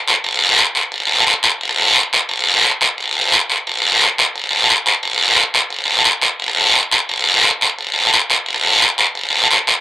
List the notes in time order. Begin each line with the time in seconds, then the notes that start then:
0.07 short guiro
0.24 long guiro
0.58 short guiro
0.75 short guiro
0.92 long guiro
1.27 short guiro
1.43 short guiro
1.61 long guiro
1.95 short guiro
2.13 short guiro
2.29 long guiro
2.64 short guiro
2.81 short guiro
2.98 long guiro
3.33 short guiro
3.50 short guiro
3.67 long guiro
4.01 short guiro
4.18 short guiro
4.36 long guiro
4.69 short guiro
4.86 short guiro
5.03 long guiro
5.36 short guiro
5.54 short guiro
5.70 long guiro
6.04 short guiro
6.21 short guiro
6.40 long guiro
6.74 short guiro
6.91 short guiro
7.09 long guiro
7.44 short guiro
7.61 short guiro
7.79 long guiro
8.13 short guiro
8.30 short guiro
8.46 long guiro
8.81 short guiro
8.98 short guiro
9.15 long guiro
9.51 short guiro
9.67 short guiro